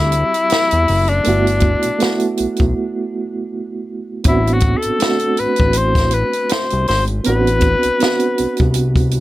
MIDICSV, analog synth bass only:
0, 0, Header, 1, 2, 480
1, 0, Start_track
1, 0, Tempo, 750000
1, 802, Time_signature, 4, 2, 24, 8
1, 5889, End_track
2, 0, Start_track
2, 0, Title_t, "Analog synth bass"
2, 0, Program_c, 0, 38
2, 0, Note_on_c, 0, 38, 98
2, 154, Note_off_c, 0, 38, 0
2, 466, Note_on_c, 0, 40, 91
2, 554, Note_off_c, 0, 40, 0
2, 574, Note_on_c, 0, 30, 98
2, 775, Note_off_c, 0, 30, 0
2, 813, Note_on_c, 0, 31, 100
2, 1127, Note_off_c, 0, 31, 0
2, 1185, Note_on_c, 0, 35, 49
2, 1226, Note_off_c, 0, 35, 0
2, 1536, Note_on_c, 0, 35, 47
2, 1585, Note_off_c, 0, 35, 0
2, 1668, Note_on_c, 0, 35, 93
2, 1755, Note_off_c, 0, 35, 0
2, 2727, Note_on_c, 0, 33, 103
2, 3044, Note_off_c, 0, 33, 0
2, 3108, Note_on_c, 0, 33, 51
2, 3148, Note_off_c, 0, 33, 0
2, 3457, Note_on_c, 0, 33, 49
2, 3505, Note_off_c, 0, 33, 0
2, 3587, Note_on_c, 0, 33, 103
2, 3994, Note_off_c, 0, 33, 0
2, 4306, Note_on_c, 0, 36, 90
2, 4394, Note_off_c, 0, 36, 0
2, 4414, Note_on_c, 0, 32, 96
2, 4615, Note_off_c, 0, 32, 0
2, 4654, Note_on_c, 0, 33, 111
2, 4967, Note_off_c, 0, 33, 0
2, 5025, Note_on_c, 0, 36, 51
2, 5066, Note_off_c, 0, 36, 0
2, 5374, Note_on_c, 0, 36, 48
2, 5423, Note_off_c, 0, 36, 0
2, 5508, Note_on_c, 0, 36, 87
2, 5889, Note_off_c, 0, 36, 0
2, 5889, End_track
0, 0, End_of_file